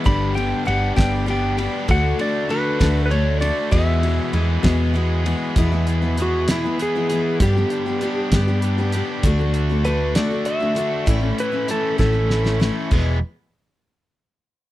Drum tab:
CC |------------|------------|------------|------------|
RD |x-x-x-x-x-x-|x-x-x-x-x-x-|x-x-x-x-x-x-|------------|
HH |------------|------------|------------|x-x-x-x-x-x-|
SD |------o-----|------o-----|------o-----|------o-----|
BD |o-----o-----|o-----o-----|o-----o-----|o-----------|

CC |------------|------------|------------|x-----------|
RD |------------|------------|------------|------------|
HH |x-x-x-x-x-x-|x-x-x-x-x-x-|x-x-x-------|------------|
SD |------o-----|------o-----|------o-ooo-|------------|
BD |o-----o-----|o-----------|o-----o-----|o-----------|